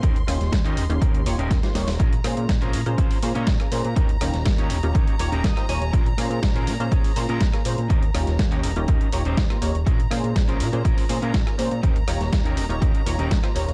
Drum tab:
HH |xxoxxxoxxxoxxxoo|xxoxxxoxxooxxxox|xxoxxxoxxxoxxxox|xxoxxxoxxooxxxox|
SD |--roo-------oooo|--r-o-------or--|--roo-------or--|--r-o-------or--|
BD |o---o---o---o---|o---o---o---o---|o---o---o---o---|o---o---o---o---|

HH |xxoxxxoxxxoxxxox|xxoxxxoxxooxxxox|xxoxxxoxxxoxxxox|
SD |--roo-------or--|--r-o-------or--|--roo-------or--|
BD |o---o---o---o---|o---o---o---o---|o---o---o---o---|